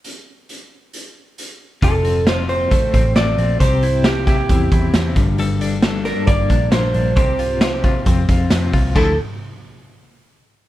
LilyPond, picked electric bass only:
\new Staff \with { instrumentName = "Picked electric bass" } { \clef bass \time 4/4 \key d \minor \tempo 4 = 134 r1 | f,,2 a,,8 a,,8 a,,8 bes,,8 | c,2 e,8 e,8 e,8 g,,8~ | g,,2 g,,8 bes,,8 bes,,8 bes,,8 |
c,2 f,8 f,8 f,8 c,8 | d,8 r2. r8 | }